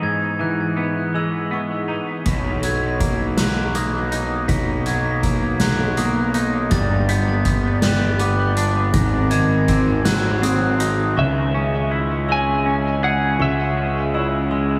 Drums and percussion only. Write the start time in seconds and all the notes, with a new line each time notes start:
2.26 kick, closed hi-hat
2.63 closed hi-hat
3.00 kick, closed hi-hat
3.37 snare, closed hi-hat
3.75 closed hi-hat
4.12 closed hi-hat
4.49 kick, closed hi-hat
4.86 closed hi-hat
5.23 kick, closed hi-hat
5.59 snare, closed hi-hat
5.97 closed hi-hat
6.34 closed hi-hat
6.71 kick, closed hi-hat
7.09 closed hi-hat
7.45 kick, closed hi-hat
7.82 snare, closed hi-hat
8.19 closed hi-hat
8.57 closed hi-hat
8.94 kick, closed hi-hat
9.31 closed hi-hat
9.68 kick, closed hi-hat
10.05 snare, closed hi-hat
10.43 closed hi-hat
10.80 closed hi-hat